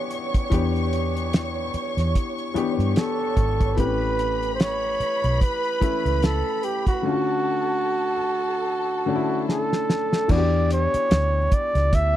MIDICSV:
0, 0, Header, 1, 7, 480
1, 0, Start_track
1, 0, Tempo, 815217
1, 304, Time_signature, 4, 2, 24, 8
1, 7163, End_track
2, 0, Start_track
2, 0, Title_t, "String section"
2, 0, Program_c, 0, 48
2, 0, Note_on_c, 0, 73, 77
2, 0, Note_on_c, 0, 85, 81
2, 2199, Note_off_c, 0, 73, 0
2, 2199, Note_off_c, 0, 85, 0
2, 2229, Note_on_c, 0, 83, 88
2, 2231, Note_on_c, 0, 71, 72
2, 4123, Note_off_c, 0, 83, 0
2, 4124, Note_off_c, 0, 71, 0
2, 4143, Note_on_c, 0, 69, 74
2, 4143, Note_on_c, 0, 81, 85
2, 6038, Note_off_c, 0, 69, 0
2, 6038, Note_off_c, 0, 81, 0
2, 7019, Note_on_c, 0, 59, 76
2, 7020, Note_on_c, 0, 76, 76
2, 7021, Note_on_c, 0, 67, 78
2, 7163, Note_off_c, 0, 59, 0
2, 7163, Note_off_c, 0, 67, 0
2, 7163, Note_off_c, 0, 76, 0
2, 7163, End_track
3, 0, Start_track
3, 0, Title_t, "Flugelhorn"
3, 0, Program_c, 1, 56
3, 1754, Note_on_c, 1, 69, 89
3, 2205, Note_off_c, 1, 69, 0
3, 2232, Note_on_c, 1, 71, 88
3, 2650, Note_off_c, 1, 71, 0
3, 2676, Note_on_c, 1, 72, 72
3, 2718, Note_on_c, 1, 73, 95
3, 2727, Note_off_c, 1, 72, 0
3, 3189, Note_off_c, 1, 73, 0
3, 3193, Note_on_c, 1, 71, 91
3, 3675, Note_on_c, 1, 69, 88
3, 3684, Note_off_c, 1, 71, 0
3, 3910, Note_on_c, 1, 67, 82
3, 3919, Note_off_c, 1, 69, 0
3, 4046, Note_off_c, 1, 67, 0
3, 4050, Note_on_c, 1, 66, 93
3, 5563, Note_off_c, 1, 66, 0
3, 5596, Note_on_c, 1, 69, 77
3, 6074, Note_on_c, 1, 74, 90
3, 6083, Note_off_c, 1, 69, 0
3, 6308, Note_off_c, 1, 74, 0
3, 6317, Note_on_c, 1, 73, 95
3, 6796, Note_on_c, 1, 74, 95
3, 6804, Note_off_c, 1, 73, 0
3, 7035, Note_on_c, 1, 76, 112
3, 7044, Note_off_c, 1, 74, 0
3, 7163, Note_off_c, 1, 76, 0
3, 7163, End_track
4, 0, Start_track
4, 0, Title_t, "Grand piano"
4, 0, Program_c, 2, 0
4, 0, Control_c, 2, 64, 127
4, 0, Note_on_c, 2, 52, 75
4, 0, Note_on_c, 2, 59, 64
4, 0, Note_on_c, 2, 62, 66
4, 0, Note_on_c, 2, 66, 68
4, 0, Note_on_c, 2, 67, 81
4, 59, Note_off_c, 2, 62, 0
4, 81, Note_off_c, 2, 67, 0
4, 294, Note_off_c, 2, 52, 0
4, 294, Note_on_c, 2, 52, 73
4, 302, Note_off_c, 2, 59, 0
4, 302, Note_on_c, 2, 59, 68
4, 307, Note_on_c, 2, 62, 65
4, 315, Note_on_c, 2, 67, 83
4, 942, Note_off_c, 2, 52, 0
4, 946, Note_off_c, 2, 59, 0
4, 948, Note_off_c, 2, 62, 0
4, 952, Note_off_c, 2, 67, 0
4, 1497, Note_on_c, 2, 52, 70
4, 1502, Note_on_c, 2, 59, 71
4, 1509, Note_on_c, 2, 62, 65
4, 1516, Note_on_c, 2, 67, 85
4, 1973, Note_off_c, 2, 52, 0
4, 1975, Note_off_c, 2, 59, 0
4, 1979, Note_off_c, 2, 62, 0
4, 1982, Note_off_c, 2, 67, 0
4, 2216, Note_on_c, 2, 52, 63
4, 2222, Note_on_c, 2, 57, 62
4, 2228, Note_on_c, 2, 60, 45
4, 2232, Control_c, 2, 64, 0
4, 2233, Note_on_c, 2, 67, 71
4, 2236, Note_off_c, 2, 66, 0
4, 2267, Note_on_c, 2, 61, 56
4, 2271, Note_off_c, 2, 60, 0
4, 2331, Control_c, 2, 64, 127
4, 2863, Note_off_c, 2, 52, 0
4, 2866, Note_off_c, 2, 57, 0
4, 2871, Note_off_c, 2, 67, 0
4, 2888, Note_off_c, 2, 61, 0
4, 3418, Note_on_c, 2, 52, 59
4, 3423, Note_on_c, 2, 57, 57
4, 3429, Note_on_c, 2, 61, 60
4, 3434, Note_on_c, 2, 64, 72
4, 3893, Note_off_c, 2, 52, 0
4, 3896, Note_off_c, 2, 57, 0
4, 3899, Note_off_c, 2, 61, 0
4, 3901, Note_off_c, 2, 64, 0
4, 4135, Note_on_c, 2, 50, 64
4, 4140, Note_on_c, 2, 57, 56
4, 4147, Note_on_c, 2, 61, 56
4, 4151, Control_c, 2, 64, 0
4, 4154, Note_on_c, 2, 65, 55
4, 4191, Note_on_c, 2, 66, 66
4, 4194, Note_off_c, 2, 65, 0
4, 4245, Control_c, 2, 64, 127
4, 4782, Note_off_c, 2, 50, 0
4, 4784, Note_off_c, 2, 57, 0
4, 4788, Note_off_c, 2, 61, 0
4, 4810, Note_off_c, 2, 66, 0
4, 5333, Note_on_c, 2, 50, 72
4, 5340, Note_on_c, 2, 57, 66
4, 5347, Note_on_c, 2, 61, 74
4, 5352, Note_on_c, 2, 62, 65
4, 5391, Note_on_c, 2, 64, 79
4, 5392, Note_off_c, 2, 62, 0
4, 5810, Note_off_c, 2, 50, 0
4, 5813, Note_off_c, 2, 57, 0
4, 5817, Note_off_c, 2, 61, 0
4, 5839, Note_off_c, 2, 64, 0
4, 6053, Note_on_c, 2, 52, 65
4, 6059, Note_on_c, 2, 59, 59
4, 6065, Note_on_c, 2, 62, 63
4, 6070, Control_c, 2, 64, 0
4, 6071, Note_on_c, 2, 66, 64
4, 6111, Note_off_c, 2, 66, 0
4, 6111, Note_on_c, 2, 67, 76
4, 6191, Control_c, 2, 64, 127
4, 6699, Note_off_c, 2, 52, 0
4, 6702, Note_off_c, 2, 59, 0
4, 6705, Note_off_c, 2, 62, 0
4, 6728, Note_off_c, 2, 67, 0
4, 7163, End_track
5, 0, Start_track
5, 0, Title_t, "Fingered electric bass"
5, 0, Program_c, 3, 33
5, 306, Note_on_c, 3, 40, 81
5, 1002, Note_off_c, 3, 40, 0
5, 1161, Note_on_c, 3, 40, 69
5, 1250, Note_off_c, 3, 40, 0
5, 1641, Note_on_c, 3, 43, 83
5, 1730, Note_off_c, 3, 43, 0
5, 1984, Note_on_c, 3, 32, 85
5, 2225, Note_off_c, 3, 32, 0
5, 2225, Note_on_c, 3, 33, 89
5, 2921, Note_off_c, 3, 33, 0
5, 3086, Note_on_c, 3, 35, 76
5, 3173, Note_off_c, 3, 35, 0
5, 3565, Note_on_c, 3, 37, 74
5, 3775, Note_off_c, 3, 37, 0
5, 6063, Note_on_c, 3, 40, 90
5, 6395, Note_off_c, 3, 40, 0
5, 6543, Note_on_c, 3, 38, 87
5, 6753, Note_off_c, 3, 38, 0
5, 6919, Note_on_c, 3, 37, 88
5, 7008, Note_off_c, 3, 37, 0
5, 7023, Note_on_c, 3, 38, 101
5, 7163, Note_off_c, 3, 38, 0
5, 7163, End_track
6, 0, Start_track
6, 0, Title_t, "Muted fingered electric bass strokes"
6, 1025, Note_on_c, 9, 29, 39
6, 1083, Note_off_c, 9, 29, 0
6, 1502, Note_on_c, 9, 29, 35
6, 1561, Note_off_c, 9, 29, 0
6, 2944, Note_on_c, 9, 29, 38
6, 3003, Note_off_c, 9, 29, 0
6, 3425, Note_on_c, 9, 29, 41
6, 3483, Note_off_c, 9, 29, 0
6, 6442, Note_on_c, 9, 29, 46
6, 6501, Note_off_c, 9, 29, 0
6, 7163, End_track
7, 0, Start_track
7, 0, Title_t, "Drums"
7, 62, Note_on_c, 9, 42, 60
7, 121, Note_off_c, 9, 42, 0
7, 203, Note_on_c, 9, 36, 76
7, 203, Note_on_c, 9, 42, 47
7, 262, Note_off_c, 9, 36, 0
7, 262, Note_off_c, 9, 42, 0
7, 304, Note_on_c, 9, 36, 87
7, 304, Note_on_c, 9, 42, 75
7, 362, Note_off_c, 9, 42, 0
7, 363, Note_off_c, 9, 36, 0
7, 448, Note_on_c, 9, 42, 30
7, 507, Note_off_c, 9, 42, 0
7, 547, Note_on_c, 9, 42, 75
7, 606, Note_off_c, 9, 42, 0
7, 686, Note_on_c, 9, 42, 45
7, 745, Note_off_c, 9, 42, 0
7, 785, Note_on_c, 9, 42, 83
7, 791, Note_on_c, 9, 38, 102
7, 844, Note_off_c, 9, 42, 0
7, 849, Note_off_c, 9, 38, 0
7, 1024, Note_on_c, 9, 42, 55
7, 1083, Note_off_c, 9, 42, 0
7, 1164, Note_on_c, 9, 42, 46
7, 1172, Note_on_c, 9, 38, 27
7, 1223, Note_off_c, 9, 42, 0
7, 1231, Note_off_c, 9, 38, 0
7, 1267, Note_on_c, 9, 36, 61
7, 1269, Note_on_c, 9, 42, 67
7, 1326, Note_off_c, 9, 36, 0
7, 1328, Note_off_c, 9, 42, 0
7, 1403, Note_on_c, 9, 42, 29
7, 1462, Note_off_c, 9, 42, 0
7, 1508, Note_on_c, 9, 42, 68
7, 1567, Note_off_c, 9, 42, 0
7, 1649, Note_on_c, 9, 42, 46
7, 1708, Note_off_c, 9, 42, 0
7, 1743, Note_on_c, 9, 42, 81
7, 1750, Note_on_c, 9, 38, 96
7, 1802, Note_off_c, 9, 42, 0
7, 1809, Note_off_c, 9, 38, 0
7, 1983, Note_on_c, 9, 36, 80
7, 1983, Note_on_c, 9, 42, 63
7, 2042, Note_off_c, 9, 36, 0
7, 2042, Note_off_c, 9, 42, 0
7, 2123, Note_on_c, 9, 36, 87
7, 2123, Note_on_c, 9, 42, 42
7, 2182, Note_off_c, 9, 36, 0
7, 2182, Note_off_c, 9, 42, 0
7, 2223, Note_on_c, 9, 42, 77
7, 2224, Note_on_c, 9, 36, 90
7, 2282, Note_off_c, 9, 42, 0
7, 2283, Note_off_c, 9, 36, 0
7, 2467, Note_on_c, 9, 42, 75
7, 2526, Note_off_c, 9, 42, 0
7, 2606, Note_on_c, 9, 42, 41
7, 2665, Note_off_c, 9, 42, 0
7, 2706, Note_on_c, 9, 42, 79
7, 2712, Note_on_c, 9, 38, 102
7, 2765, Note_off_c, 9, 42, 0
7, 2771, Note_off_c, 9, 38, 0
7, 2948, Note_on_c, 9, 42, 58
7, 3006, Note_off_c, 9, 42, 0
7, 3085, Note_on_c, 9, 42, 44
7, 3144, Note_off_c, 9, 42, 0
7, 3187, Note_on_c, 9, 36, 71
7, 3188, Note_on_c, 9, 42, 68
7, 3246, Note_off_c, 9, 36, 0
7, 3247, Note_off_c, 9, 42, 0
7, 3323, Note_on_c, 9, 42, 32
7, 3382, Note_off_c, 9, 42, 0
7, 3424, Note_on_c, 9, 36, 74
7, 3428, Note_on_c, 9, 42, 67
7, 3483, Note_off_c, 9, 36, 0
7, 3487, Note_off_c, 9, 42, 0
7, 3569, Note_on_c, 9, 42, 45
7, 3628, Note_off_c, 9, 42, 0
7, 3665, Note_on_c, 9, 42, 82
7, 3672, Note_on_c, 9, 38, 98
7, 3724, Note_off_c, 9, 42, 0
7, 3731, Note_off_c, 9, 38, 0
7, 3904, Note_on_c, 9, 42, 63
7, 3963, Note_off_c, 9, 42, 0
7, 4043, Note_on_c, 9, 36, 74
7, 4044, Note_on_c, 9, 42, 45
7, 4102, Note_off_c, 9, 36, 0
7, 4103, Note_off_c, 9, 42, 0
7, 5588, Note_on_c, 9, 38, 56
7, 5647, Note_off_c, 9, 38, 0
7, 5727, Note_on_c, 9, 38, 55
7, 5786, Note_off_c, 9, 38, 0
7, 5827, Note_on_c, 9, 38, 80
7, 5886, Note_off_c, 9, 38, 0
7, 5962, Note_on_c, 9, 38, 67
7, 6021, Note_off_c, 9, 38, 0
7, 6059, Note_on_c, 9, 49, 90
7, 6061, Note_on_c, 9, 36, 89
7, 6118, Note_off_c, 9, 49, 0
7, 6120, Note_off_c, 9, 36, 0
7, 6303, Note_on_c, 9, 42, 89
7, 6362, Note_off_c, 9, 42, 0
7, 6441, Note_on_c, 9, 42, 56
7, 6500, Note_off_c, 9, 42, 0
7, 6540, Note_on_c, 9, 42, 89
7, 6546, Note_on_c, 9, 38, 121
7, 6599, Note_off_c, 9, 42, 0
7, 6605, Note_off_c, 9, 38, 0
7, 6781, Note_on_c, 9, 42, 67
7, 6782, Note_on_c, 9, 36, 86
7, 6839, Note_off_c, 9, 42, 0
7, 6841, Note_off_c, 9, 36, 0
7, 6920, Note_on_c, 9, 42, 50
7, 6928, Note_on_c, 9, 38, 31
7, 6979, Note_off_c, 9, 42, 0
7, 6987, Note_off_c, 9, 38, 0
7, 7023, Note_on_c, 9, 36, 74
7, 7023, Note_on_c, 9, 42, 77
7, 7081, Note_off_c, 9, 42, 0
7, 7082, Note_off_c, 9, 36, 0
7, 7163, End_track
0, 0, End_of_file